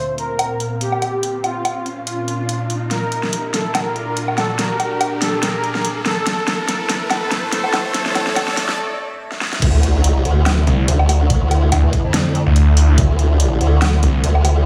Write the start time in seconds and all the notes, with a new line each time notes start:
Already playing: A#2 A#3 C4 F4 C5 F5, riser
0.18 A#4, closed hi-hat
0.39 closed hi-hat, low woodblock
0.60 closed hi-hat
0.81 G4, closed hi-hat
0.92 low woodblock
1.02 closed hi-hat, low woodblock
1.23 closed hi-hat
1.44 F4, closed hi-hat, low woodblock
1.65 closed hi-hat, low woodblock
1.86 closed hi-hat
2.07 F4, closed hi-hat
2.28 closed hi-hat
2.49 closed hi-hat
2.70 closed hi-hat
2.91 A#2 D4 G4 A#4 D5, snare, closed hi-hat
3.12 closed hi-hat
3.23 snare
3.33 closed hi-hat
3.54 A4, snare, open hi-hat
3.75 A#4, snare, closed hi-hat, low woodblock
3.96 closed hi-hat
4.17 closed hi-hat
4.28 low woodblock
4.38 A4, snare, closed hi-hat, low woodblock
4.59 A#4, snare, closed hi-hat
4.80 closed hi-hat, low woodblock
5.01 closed hi-hat, low woodblock
5.22 A4, snare, open hi-hat
5.43 A#4, snare, closed hi-hat
5.64 closed hi-hat
5.75 snare
5.85 closed hi-hat
6.05 A4, snare, closed hi-hat
6.26 A2 A3 C4 E4 A4 E5, snare, closed hi-hat
6.48 snare, closed hi-hat
6.68 A4, snare, closed hi-hat
6.89 snare, open hi-hat
7.10 A4, snare, closed hi-hat, low woodblock
7.31 snare, closed hi-hat
7.52 A4, snare, closed hi-hat
7.64 low woodblock
7.73 snare, closed hi-hat, low woodblock
7.94 A4, snare, closed hi-hat
8.06 snare
8.15 A4, snare, closed hi-hat, low woodblock
8.27 snare
8.36 A4, snare, closed hi-hat, low woodblock
8.48 snare
8.57 A4, snare, open hi-hat
8.69 snare
9.32 snare
9.41 snare
9.53 snare
9.62 D2 D3 A3 E4 F4 D5, kick, closed hi-hat, crash, sub drop
9.83 closed hi-hat
10.04 C#2, closed hi-hat
10.25 D2, closed hi-hat
10.46 snare, closed hi-hat, low woodblock
10.67 C2, closed hi-hat
10.88 D2, closed hi-hat
10.99 low woodblock
11.09 open hi-hat, low woodblock
11.30 kick, closed hi-hat
11.51 closed hi-hat, low woodblock
11.72 D2, closed hi-hat, low woodblock
11.83 E2
11.93 kick, closed hi-hat
12.04 F2
12.14 snare, closed hi-hat
12.35 closed hi-hat
12.46 D2
12.56 closed hi-hat
12.77 open hi-hat
12.98 D2, kick, closed hi-hat
13.19 closed hi-hat
13.40 closed hi-hat
13.61 D2, closed hi-hat
13.82 snare, closed hi-hat, low woodblock
14.03 C2, closed hi-hat
14.24 D2, closed hi-hat
14.35 low woodblock
14.45 open hi-hat, low woodblock